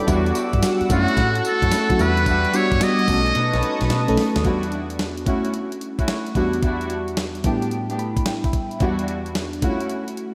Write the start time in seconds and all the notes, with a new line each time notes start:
Already playing: C#5 E5 D6
0.00 D5
0.07 E2 G3 B3 D4 E4 F#4 F#5 E6, kick, closed hi-hat, tambourine
0.26 closed hi-hat
0.35 closed hi-hat, tambourine
0.53 G2, kick, closed hi-hat
0.63 snare, closed hi-hat, tambourine
0.81 muted fingered electric bass stroke, closed hi-hat
0.89 F#2 A3 C#4 E4 F#4 A4 C#6 E6, kick, closed hi-hat, tambourine
1.08 closed hi-hat
1.17 A2, kick, snare, closed hi-hat
1.35 closed hi-hat
1.45 A4, closed hi-hat, tambourine
1.62 F#2 A3 C#4 E4 F#4, kick, closed hi-hat
1.72 snare, closed hi-hat, tambourine
1.90 F#3 A3 C#4 E4 F#4, kick, closed hi-hat
1.98 E2 G3 B3 D4 E4 F#4 B4 D6, closed hi-hat, tambourine
2.17 closed hi-hat
2.25 G3 D4 E4 F#4, kick, closed hi-hat, tambourine
2.45 closed hi-hat
2.53 G3 B3 D4 F#4 C#5, closed hi-hat, tambourine
2.72 G2, kick, closed hi-hat
2.81 G3 B3 D4 F#4 D#5, snare, closed hi-hat, tambourine
2.99 closed hi-hat
3.08 B1 A3 B3 C#4 D#4 F#4 A4 B4 A5 C#6 D#6, kick, open hi-hat, tambourine
3.26 closed hi-hat
3.35 B2, snare, closed hi-hat
3.53 B1 B3 C#4 D#4 A4, snare, closed hi-hat
3.63 closed hi-hat
3.81 B1, snare, closed hi-hat
3.90 B2, snare, closed hi-hat
4.08 B1 A3 C#4 D#4 A4, closed hi-hat
4.18 snare, open hi-hat
4.36 D#2, snare, closed hi-hat
4.44 E2 G3 B3 D4 E4 F#4, kick, closed hi-hat
4.63 closed hi-hat
4.72 closed hi-hat
4.90 closed hi-hat
4.99 snare, closed hi-hat
5.17 closed hi-hat
5.26 A3 C#4 E4 F#4, kick, closed hi-hat
5.45 closed hi-hat
5.54 closed hi-hat
5.72 closed hi-hat
5.81 closed hi-hat
5.99 A3 C#4 E4 F#4, kick, closed hi-hat
6.08 snare, closed hi-hat
6.27 closed hi-hat
6.35 E2 G3 B3 D4 E4 F#4, kick, closed hi-hat
6.53 closed hi-hat
6.62 G3 D4 E4 F#4, kick, closed hi-hat
6.81 closed hi-hat
6.90 closed hi-hat
7.08 closed hi-hat
7.17 snare, closed hi-hat
7.35 closed hi-hat
7.43 A2 G3 A3 B3 D4 E4 G4, kick, closed hi-hat
7.62 closed hi-hat
7.71 closed hi-hat
7.89 A3 B3 D4 G4, closed hi-hat
7.99 B5, closed hi-hat
8.17 kick, closed hi-hat
8.26 G5, snare, closed hi-hat
8.44 E5, kick, closed hi-hat
8.53 kick, closed hi-hat
8.71 closed hi-hat
8.80 E2 G3 B3 D4 E4 F#4, kick, closed hi-hat
8.99 closed hi-hat
9.08 closed hi-hat
9.26 closed hi-hat
9.35 snare, closed hi-hat
9.53 closed hi-hat
9.62 A3 C#4 E4 F4 F#4, kick, closed hi-hat
9.71 F#4
9.80 closed hi-hat
9.90 closed hi-hat
10.08 closed hi-hat
10.17 closed hi-hat